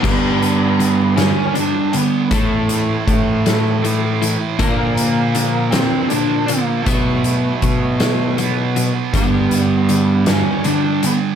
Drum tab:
CC |x-----|------|------|------|
HH |-xxxxx|xxxxxx|xxxxxx|xxxxxx|
SD |---o--|---o--|---o--|---o--|
BD |o-----|o-o---|o-----|o-o---|

CC |------|
HH |xxxxxx|
SD |---o--|
BD |o-----|